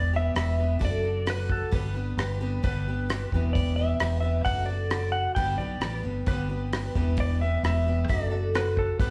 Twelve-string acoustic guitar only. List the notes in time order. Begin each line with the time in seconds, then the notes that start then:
Already playing: E3 G3 B3 D4 G4
0.13 B3 D4 G4
0.35 G3 B3 D4 G4
0.59 B3 D4 G4
0.79 F#3 D4 F#4 A4
1.04 D4 F#4 A4
1.26 F#3 D4 F#4 A4
1.71 G2 D3 G3 B3 D4 G4
1.95 G3 B3 D4 G4
2.18 G3 B3 D4 G4
2.41 G3 B3 D4 G4
2.63 G2 D3 G3 B3 D4 G4
2.88 G3 B3 D4 G4
3.09 G3 B3 D4 G4
3.34 E3 G3 B3 D4 G4
3.78 B3 D4 G4
4.00 G3 B3 D4 G4
4.22 B3 D4 G4
4.44 F#3 D4 F#4 A4
4.68 D4 F#4 A4
4.91 F#3 D4 F#4 A4
5.37 G2 D3 G3 B3 D4 G4
5.59 G3 B3 D4 G4
5.83 G3 B3 D4 G4
6.03 G3 B3 D4 G4
6.27 G2 D3 G3 B3 D4 G4
6.49 G3 B3 D4 G4
6.73 G3 B3 D4 G4
6.96 E3 G3 B3 D4 G4
7.41 B3 D4 G4
7.64 G3 B3 D4 G4
7.87 B3 D4 G4
8.08 F#3 D4 F#4 A4
8.31 D4 F#4 A4
8.54 F#3 D4 F#4 A4
9.00 G2 D3 G3 B3 D4 G4